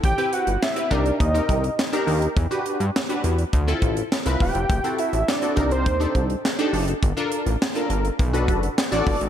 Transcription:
<<
  \new Staff \with { instrumentName = "Analog synth lead" } { \time 4/4 \key c \lydian \tempo 4 = 103 g''8 fis''8 e''8 d''8 ees''4. r8 | r2. r8 g''8~ | g''8 e''8 d''8. c''4 r4 r16 | r1 | }
  \new Staff \with { instrumentName = "Analog polysynth" } { \time 4/4 \key c \lydian r16 <c' e' g' b'>8 r8 <c' e' g' b'>16 <d' ees' g' bes'>8 r16 <c' ees' g' bes'>8 r8 <d' ees' g' bes'>8 r16 | r16 <d' fis' g' b'>8 r8 <d' fis' g' b'>8 r8 <c' e' f' a'>8 r8 <c' e' f' b'>8 r16 | r16 <c' e' fis' a'>8 r8 <c' e' fis' a'>16 <d' ees' g' bes'>8 r16 <d' ees' g' a'>8 r8 <d' ees' g' a'>8 r16 | r16 <d' f' a' bes'>8 r8 <d' f' a' bes'>8 r8 <d' fis' a' b'>8 r8 <d' fis' a' d''>8 r16 | }
  \new Staff \with { instrumentName = "Analog synth bass" } { \clef bass \time 4/4 \key c \lydian a,,16 r8 g,,16 r8 c,8 ees,8 c,8 r8 ees,8 | e,16 r8 g,16 r8 e,8 d,8 a,,8 r16 c,16 e,,16 f,,16 | fis,,16 r8 a,,16 r8 c,8 ees,8 c,8 r8 fis,,8 | g,,16 r8 a,,16 r8 g,,8 b,,8 fis,,8 r16 a,,16 g,,16 gis,,16 | }
  \new DrumStaff \with { instrumentName = "Drums" } \drummode { \time 4/4 <hh bd>16 hh16 hh16 hh16 <hc sn>16 hh16 <hh bd>16 hh16 <hh bd>16 hh16 <hh bd>16 hh16 <hc sn>16 hh16 hho16 hh16 | <hh bd>16 hh16 hh16 hh16 <hc sn>16 hh16 hh16 hh16 <hh bd>16 hh16 <hh bd>16 hh16 <hc sn>16 hh16 <hho bd>16 hh16 | <hh bd>16 hh16 hh16 hh16 <hc sn>16 hh16 <hh bd>16 hh16 <hh bd>16 hh16 <hh bd>16 hh16 <hc sn>16 hh16 hho16 hh16 | <hh bd>16 hh16 hh16 hh16 <hc sn>16 hh16 hh16 hh16 <hh bd>16 hh16 <hh bd>16 hh16 <hc sn>16 hh16 <hho bd>16 hh16 | }
>>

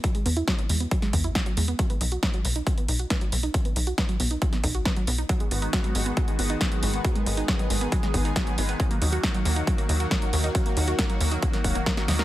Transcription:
<<
  \new Staff \with { instrumentName = "Synth arpeggio sound" } { \time 4/4 \key gis \minor \tempo 4 = 137 fis16 gis16 b16 e'16 r16 fis16 gis16 b16 fis16 gis16 b16 e'16 fis'16 fis16 gis16 b16 | fis16 b16 dis'16 fis'16 b'16 fis16 b16 dis'16 fis16 b16 dis'16 fis'16 b'16 fis16 b16 dis'16 | fis16 b16 dis'16 fis'16 b'16 fis16 b16 dis'16 fis16 b16 dis'16 fis'16 b'16 fis16 b16 dis'16 | fis16 gis16 b16 dis'16 fis'16 fis16 gis16 b16 fis16 gis16 b16 dis'16 fis'16 fis16 gis16 b16 |
fis16 gis16 b16 dis'16 fis'16 fis16 gis16 b16 fis16 gis16 b16 dis'16 fis'16 fis16 gis16 b16 | fis16 ais16 dis'16 fis'16 ais'16 fis16 ais16 dis'16 fis16 ais16 dis'16 fis'16 ais'16 fis16 ais16 dis'16 | fis16 ais16 dis'16 fis'16 ais'16 fis16 ais16 dis'16 fis16 ais16 fis''16 ais16 ais'16 fis16 dis''16 ais'16 | }
  \new Staff \with { instrumentName = "Analog synth bass" } { \clef bass \time 4/4 \key gis \minor r8 e,8 r8 e,8 r8 e,8 r8 e,8 | r8 b,,8 r8 b,,8 r8 b,,8 r8 b,,8 | r8 b,,8 r8 b,,8 r8 b,,8 r8 b,,8 | r8 gis,,8 r8 gis,,8 r8 gis,,8 r8 gis,,8 |
r8 gis,,8 r8 gis,,8 r8 gis,,8 r8 gis,,8 | r8 dis,8 r8 dis,8 r8 dis,8 r8 dis,8 | r8 dis,8 r8 dis,8 r8 dis,,8 r8 dis,8 | }
  \new DrumStaff \with { instrumentName = "Drums" } \drummode { \time 4/4 <hh bd>16 hh16 hho16 hh16 <hh bd sn>16 hh16 hho16 hh16 <hh bd>16 <hh sn>16 <hho bd>16 hh16 <hh bd sn>16 hh16 hho16 hh16 | <hh bd>16 hh16 hho16 hh16 <hh bd sn>16 hh16 hho16 hh16 <hh bd>16 hh16 hho16 hh16 <hh bd sn>16 hh16 hho16 hh16 | <hh bd>16 hh16 hho16 hh16 <hh bd sn>16 hh16 hho16 hh16 <hh bd>16 <hh sn>16 <hho bd>16 hh16 <hh bd sn>16 hh16 hho16 hh16 | <hh bd>16 hh16 hho16 hh16 <hh bd sn>16 hh16 hho16 hh16 <hh bd>16 hh16 hho16 hh16 <hh bd sn>16 hh16 hho16 hh16 |
<hh bd>16 hh16 hho16 hh16 <hh bd sn>16 hh16 hho16 hh16 <hh bd>16 <hh sn>16 <hho bd>16 hh16 <hh bd sn>16 hh16 hho16 hh16 | <hh bd>16 hh16 hho16 hh16 <hh bd sn>16 hh16 hho16 hh16 <hh bd>16 hh16 hho16 hh16 <hh bd sn>16 hh16 hho16 hh16 | <hh bd>16 hh16 hho16 hh16 <hh bd sn>16 hh16 hho16 hh16 <hh bd>16 <hh sn>16 <hho bd>16 hh16 <hh bd sn>16 <hh sn>16 <hho sn>16 <hh sn>16 | }
>>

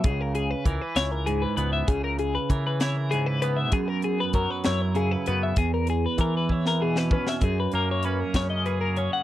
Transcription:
<<
  \new Staff \with { instrumentName = "Clean electric guitar" } { \time 6/8 \key fis \mixolydian \tempo 4. = 65 gis'16 ais'16 gis'16 b'16 ais'16 b'16 cis''16 ais'16 gis'16 b'16 b'16 e''16 | gis'16 ais'16 gis'16 b'16 ais'16 b'16 cis''16 ais'16 gis'16 b'16 b'16 e''16 | gis'16 ais'16 gis'16 b'16 ais'16 b'16 cis''16 ais'16 gis'16 b'16 b'16 e''16 | gis'16 ais'16 gis'16 b'16 ais'16 b'16 cis''16 ais'16 gis'16 b'16 b'16 e''16 |
gis'16 b'16 ais'16 cis''16 b'16 ais'16 cis''16 dis''16 b'16 ais'16 cis''16 fis''16 | }
  \new Staff \with { instrumentName = "Clean electric guitar" } { \clef bass \time 6/8 \key fis \mixolydian << { r4. e'4 b8 | r4. e'4 b8 | r4. e'4 b8 | r4. e'4 cis'8 |
r8 ais8 cis'4 gis'8 cis'8 | } \\ { cis4 e4 gis,4 | cis4 e4 gis,4 | fis,4 fis4 cis4 | e,4 e4 b,4 |
fis,4. cis4. | } >> }
  \new Staff \with { instrumentName = "Picked electric bass" } { \clef bass \time 6/8 \key fis \mixolydian cis,4 cis,16 r16 cis,4 cis,8 | cis,4 cis2 | fis,4 fis,16 r16 fis,4 fis,8 | e,4 e2 |
fis,8 fis,4 fis,4. | }
  \new DrumStaff \with { instrumentName = "Drums" } \drummode { \time 6/8 <hh bd>8 hh8 <hh bd>8 <hh sn>8 hh8 hh8 | <hh bd>8 hh8 <hh bd>8 <hh sn>8 hh8 hh8 | <hh bd>8 hh8 <hh bd>8 <hh sn>8 hh8 hh8 | <hh bd>8 hh8 <hh bd>8 bd16 sn8 sn16 bd16 sn16 |
<hh bd>8 hh8 hh8 <hh bd sn>8 hh8 hh8 | }
>>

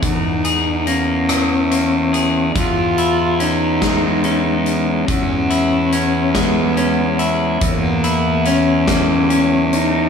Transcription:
<<
  \new Staff \with { instrumentName = "Cello" } { \time 6/8 \key cis \dorian \tempo 4. = 47 dis'4 cis'2 | eis'4 dis'2 | cis'4. b4 r8 | ais4 cis'8 cis'4 dis'8 | }
  \new Staff \with { instrumentName = "Clean electric guitar" } { \time 6/8 \key cis \dorian <e, e gis'>8 gis'8 ais8 e8 ais8 gis'8 | e,8 e'8 cis'8 gis8 cis'4 | e,8 e'8 cis'8 gis8 cis'8 e'8 | e,8 e'8 cis'8 ais8 cis'4 | }
  \new Staff \with { instrumentName = "Fingered electric bass" } { \clef bass \time 6/8 \key cis \dorian e,2. | e,2. | e,2. | e,2. | }
  \new DrumStaff \with { instrumentName = "Drums" } \drummode { \time 6/8 <hh bd>8 hh8 hh8 <hh ss>8 hh8 hh8 | <hh bd>8 hh8 hh8 <hh bd sn>8 hh8 hh8 | <hh bd>8 hh8 hh8 <hh bd sn>8 hh8 hh8 | <hh bd>8 hh8 hh8 <hh bd sn>8 hh8 hh8 | }
>>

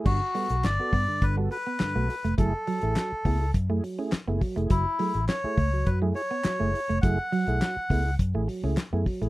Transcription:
<<
  \new Staff \with { instrumentName = "Melodica" } { \time 4/4 \key fis \minor \tempo 4 = 103 fis'4 d''4 b'8 b'4. | a'2 r2 | e'4 cis''4 b'8 cis''4. | fis''2 r2 | }
  \new Staff \with { instrumentName = "Tonewheel organ" } { \time 4/4 \key fis \minor <g, d>16 r16 <b fis' a'>16 <fis' a'>16 r16 <b fis' a'>16 r16 <g, d>16 <g, d>16 <b fis' a'>16 <fis' a'>16 r16 <g, d>16 <b fis' a'>16 <fis' a'>16 r16 | <a e' gis'>16 r16 fis16 <a e' gis'>16 fis16 r16 <a e' gis'>16 <e' gis'>16 r16 <a e' gis'>16 fis16 <a e' gis'>16 r16 <a e' gis'>16 fis16 <a e' gis'>16 | fis16 r16 <a e' gis'>16 <e' gis'>16 r16 <a e' gis'>16 r16 fis16 fis16 <a e' gis'>16 <e' gis'>16 r16 fis16 <a e' gis'>16 <e' gis'>16 r16 | <a e' gis'>16 r16 fis16 <a e' gis'>16 fis16 r16 <a e' gis'>16 <e' gis'>16 r16 <a e' gis'>16 fis16 <a e' gis'>16 r16 <a e' gis'>16 fis16 <a e' gis'>16 | }
  \new Staff \with { instrumentName = "Clean electric guitar" } { \time 4/4 \key fis \minor g16 r16 g16 r8. b16 r8 g16 r16 b16 r16 a16 r16 a16 | fis16 r16 fis16 r8. b16 r8 a16 r16 cis'16 r16 b16 r16 a16 | fis16 r16 fis16 r8. a16 r8 fis16 r16 b16 r16 a16 r16 a16 | fis16 r16 fis16 r8. b16 r8 a16 r16 cis'16 r16 b16 r16 a16 | }
  \new Staff \with { instrumentName = "Fingered electric bass" } { \clef bass \time 4/4 \key fis \minor g,,16 r8 b,,16 g,,16 r16 g,16 r16 g,,8 r8. b,,16 r16 eis,,16 | fis,,16 r8 a,,16 r8 cis,8 fis,8 r8. fis,,16 r16 eis,,16 | fis,,16 r8 a,,16 r8 cis,8 fis,8 r8. fis,,16 r16 eis,,16 | fis,,16 r8 b,,16 r8 cis,8 fis,16 a,,16 r16 cis,16 r16 fis,16 r16 ais,,16 | }
  \new DrumStaff \with { instrumentName = "Drums" } \drummode { \time 4/4 <cymc bd>8 hho16 hh16 <hc hh sn>8 <hho bd>8 <hh bd>8 hho8 <hc hh sn>8 hho16 hh16 | <hh bd>8 hho16 hh16 <hc hh sn>8 <hho bd>8 <hh bd>8 hho8 <hc hh sn>8 <hho bd>16 hh16 | <hh bd>8 hho16 hh16 <hc hh sn>8 <hho bd>8 <hh bd>8 hho8 <hc hh sn>8 hho16 hh16 | <hh bd>8 hho16 hh16 <hc hh sn>8 <hho bd>8 <hh bd>8 hho8 <hc hh sn>8 <hho bd>16 hh16 | }
>>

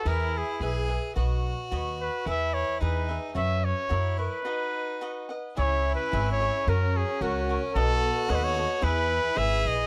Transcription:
<<
  \new Staff \with { instrumentName = "Cavaquinho" } { \time 2/4 \key b \major \tempo 4 = 110 <e' gis' b' e''>4 <e' gis' b' e''>8 <gis' b' e''>8 | <fis' b' cis'' dis''>4 <fis' b' cis'' dis''>4 | <e' gis' b' e''>4 <e' gis' b' e''>8 <gis' b' e''>8 | <fis' b' cis'' e''>4 <fis' ais' cis'' e''>8 <ais' cis'' e''>8 |
<fis' b' dis'' fis''>4 <fis' b' dis'' fis''>8 <b' dis'' fis''>8 | <e' gis' cis'' e''>4 <e' gis' cis'' e''>8 <gis' cis'' e''>8 | <fis' ais' cis'' fis''>4 <fis' ais' cis'' fis''>8 <ais' cis'' fis''>8 | <fis' a' b' dis''>4 <fis' a' b' dis''>8 <a' b' dis''>8 |
<e' gis' b' e''>4 <e' gis' b' e''>4 | }
  \new Staff \with { instrumentName = "Trumpet" } { \time 2/4 \key b \major ais'8 gis'8 gis'8. r16 | r4. b'8 | e''8 cis''8 b'8. r16 | e''8 cis''4 b'8~ |
b'4. r8 | \tuplet 3/2 { cis''4 b'8~ b'8 cis''4 } | ais'8 gis'8 fis'8. r16 | a'4 cis''32 b'32 cis''8. |
b'4 e''8 dis''8 | }
  \new Staff \with { instrumentName = "Violin section" } { \time 2/4 \key b \major << { r2 | r2 | r2 | r2 |
r2 | <gis' e''>2 | <fis' ais'>2 | <a' dis''>2 |
<gis' b'>2 | } \\ { r2 | r2 | r2 | r2 |
r2 | cis'2~ | cis'2 | b2 |
e'2 | } >> }
  \new Staff \with { instrumentName = "Violin" } { \time 2/4 \key b \major e'4 gis'4 | fis'2 | e'4 dis'4 | cis'4 e'4 |
dis'4. r8 | e'2 | cis'2 | fis'2 |
e'4 gis'4 | }
  \new Staff \with { instrumentName = "Upright bass" } { \clef bass \time 2/4 \key b \major e,4 b,,4 | b,,4 dis,4 | e,4 e,4 | fis,4 fis,4 |
r2 | cis,4 gis,,4 | fis,4 cis,4 | b,,4 dis,4 |
e,4 gis,,8 ais,,8 | }
>>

